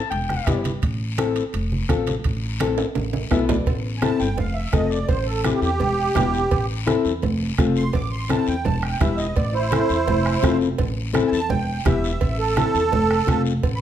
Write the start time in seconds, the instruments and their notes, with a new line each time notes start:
0.10 upright bass E1, clarinet G5, high conga, high timbale, long guiro
0.29 bombo rim, high conga
0.47 upright bass G1, nylon-string guitar B3 E4 G4, bombo low, bombo rim, high conga, high timbale, short guiro
0.64 high conga, high timbale, short guiro
0.82 upright bass A1, bombo low, high conga, high timbale, long guiro
1.18 nylon-string guitar C4 E4 A4, bombo rim, high conga, high timbale, short guiro
1.35 high timbale, short guiro
1.53 upright bass F1, high conga, high timbale, long guiro
1.72 high conga
1.89 upright bass A1, nylon-string guitar C4 F4 A4, bombo low, bombo rim, high conga, high timbale, short guiro
2.07 high conga, high timbale, short guiro
2.24 upright bass A1, bombo low, high conga, high timbale, long guiro
2.60 nylon-string guitar C4 E4 A4, bombo rim, high conga, high timbale, short guiro
2.78 high timbale, short guiro
2.95 upright bass A1, high conga, high timbale, long guiro
3.13 high conga, high timbale
3.31 upright bass B1, nylon-string guitar B3 E4 A4 E5, bombo low, bombo rim, low timbale, short guiro
3.49 nylon-string guitar D5, low conga, low timbale, short guiro
3.66 upright bass A1, bombo low, cowbell, high conga, long guiro
3.98 accordion G#5
4.02 nylon-string guitar C4 E4 A4, accordion A5, bombo rim, cowbell, high conga, short guiro
4.20 upright bass G1, accordion G5, short guiro
4.38 upright bass F1, accordion F5, cowbell, high conga, low conga, long guiro
4.54 accordion E5
4.73 upright bass F1, nylon-string guitar C4 F4 A4, accordion D#5, bombo low, bombo rim, cowbell, high conga, short guiro
4.90 accordion D5, short guiro
5.08 upright bass A1, accordion C5, bombo low, cowbell, high conga, long guiro
5.27 accordion A4
5.44 nylon-string guitar C4 E4 A4, accordion G4, bombo rim, cowbell, high conga, short guiro
5.62 upright bass E2, accordion G4, short guiro
5.80 upright bass E1, cowbell, high conga, low conga, long guiro
6.15 upright bass E1, nylon-string guitar B3 E4 G4, bombo low, bombo rim, cowbell, high conga, low conga, low timbale, short guiro
6.34 short guiro
6.51 upright bass A1, bombo low, cowbell, high conga, long guiro
6.86 nylon-string guitar C4 E4 A4, bombo rim, cowbell, high conga, short guiro
7.05 upright bass E2, short guiro
7.22 upright bass F1, cowbell, high conga, low conga, long guiro
7.58 upright bass F1, nylon-string guitar C4 F4 A4, bombo low, bombo rim, cowbell, high conga, short guiro
7.76 accordion C6, short guiro
7.93 upright bass A1, accordion D6, bombo low, cowbell, high conga, low conga, long guiro
8.11 accordion C6
8.29 nylon-string guitar C4 E4 A4, accordion A5, bombo rim, cowbell, high conga, short guiro
8.47 upright bass E2, accordion G5, short guiro
8.65 upright bass E1, accordion A5, cowbell, high conga, low conga, long guiro
8.83 accordion G5, bombo rim
9.00 upright bass E1, nylon-string guitar B3 E4 G4, accordion E5, bombo low, bombo rim, cowbell, high conga, low conga, short guiro
9.17 accordion D#5, short guiro
9.36 upright bass A1, accordion D5, bombo low, cowbell, high conga, long guiro
9.53 accordion E4 C5
9.71 nylon-string guitar C4 E4 A4, bombo rim, cowbell, high conga, short guiro
9.89 upright bass E2, short guiro
10.08 upright bass F1, cowbell, high conga, low conga, long guiro
10.26 bombo rim
10.43 upright bass F1, nylon-string guitar C4 F4 A4, bombo low, bombo rim, cowbell, high conga, low timbale, short guiro
10.61 short guiro
10.78 upright bass A1, bombo low, cowbell, high conga, low conga, long guiro
11.13 nylon-string guitar C4 E4 A4, bombo rim, cowbell, high conga, short guiro
11.27 accordion G#5
11.32 upright bass E2, accordion A5, short guiro
11.50 upright bass E1, accordion G5, cowbell, high conga, low conga, long guiro
11.85 upright bass E1, nylon-string guitar B3 E4 G4, accordion E5, bombo low, bombo rim, cowbell, high conga, low conga, short guiro
12.04 short guiro
12.21 upright bass A1, bombo low, cowbell, high conga, long guiro
12.39 accordion A4
12.56 nylon-string guitar C4 E4 A4, bombo rim, cowbell, high conga, short guiro
12.75 upright bass E2, short guiro
12.92 upright bass F1, cowbell, high conga, low conga, long guiro
13.11 bombo rim
13.27 upright bass F1, nylon-string guitar C4 F4 A4, bombo low, bombo rim, cowbell, high conga, short guiro
13.46 short guiro
13.63 upright bass A1, bombo low, cowbell, high conga, long guiro
13.76 accordion B5